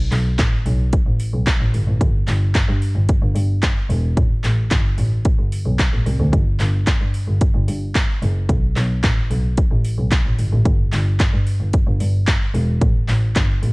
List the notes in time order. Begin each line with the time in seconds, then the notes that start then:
0.12 B1, clap, open hi-hat
0.39 A1, kick, clap, closed hi-hat
0.66 B1, open hi-hat
0.93 kick, closed hi-hat
1.06 A1
1.20 open hi-hat
1.33 B1
1.47 kick, clap, closed hi-hat
1.60 A1
1.74 G1, open hi-hat
1.87 A1
2.01 G1, kick, closed hi-hat
2.28 G1, clap, open hi-hat
2.55 G2, kick, clap, closed hi-hat
2.68 G2
2.82 open hi-hat
2.95 G1
3.09 kick, closed hi-hat
3.22 G1
3.36 G2, open hi-hat
3.63 kick, clap, closed hi-hat
3.90 E1, open hi-hat
4.17 A1, kick, closed hi-hat
4.44 A1, clap, open hi-hat
4.71 G1, kick, clap, closed hi-hat
4.98 A1, open hi-hat
5.25 kick, closed hi-hat
5.38 G1
5.52 open hi-hat
5.66 B1
5.79 kick, clap, closed hi-hat
5.93 A1
6.06 C2, open hi-hat
6.20 D2
6.33 G1, kick, closed hi-hat
6.60 G1, clap, open hi-hat
6.87 G2, kick, clap, closed hi-hat
7.01 G2
7.14 open hi-hat
7.28 G1
7.41 kick, closed hi-hat
7.55 G1
7.68 G2, open hi-hat
7.95 kick, clap, closed hi-hat
8.22 F#1, open hi-hat
8.49 B1, kick, closed hi-hat
8.76 B1, clap, open hi-hat
9.03 A1, kick, clap, closed hi-hat
9.30 B1, open hi-hat
9.57 kick, closed hi-hat
9.71 A1
9.84 open hi-hat
9.98 B1
10.12 kick, clap, closed hi-hat
10.25 A1
10.39 G1, open hi-hat
10.52 A1
10.65 G1, kick, closed hi-hat
10.93 G1, clap, open hi-hat
11.20 G2, kick, clap, closed hi-hat
11.33 G2
11.47 open hi-hat
11.60 G1
11.73 kick, closed hi-hat
11.87 G1
12.00 G2, open hi-hat
12.27 kick, clap, closed hi-hat
12.55 E1, open hi-hat
12.82 A1, kick, closed hi-hat
13.09 A1, clap, open hi-hat
13.36 G1, kick, clap, closed hi-hat
13.63 A1, open hi-hat